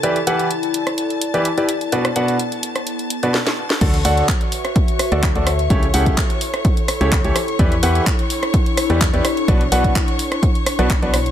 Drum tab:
CC |----------------|----------------|x---------------|----------------|
HH |xxxxxxxxxxxxxxxx|xxxxxxxxxxxx----|xxoxxxoxxxoxxxox|xxoxxxoxxxoxxxox|
CP |----------------|----------------|----x-------x---|----x-------x---|
SD |-------r--------|-r-----r----oo-o|-------r--r---r-|-------r--r---r-|
BD |----------------|----------------|o---o---o---o---|o--oo---o---o---|

CC |----------------|----------------|
HH |xxoxxxoxxxoxxxox|xxoxxxoxxxoxxxox|
CP |----x-------x---|----x-------x---|
SD |-------r--r---r-|-------r--r---r-|
BD |o---o---o---o---|o--oo---o---o---|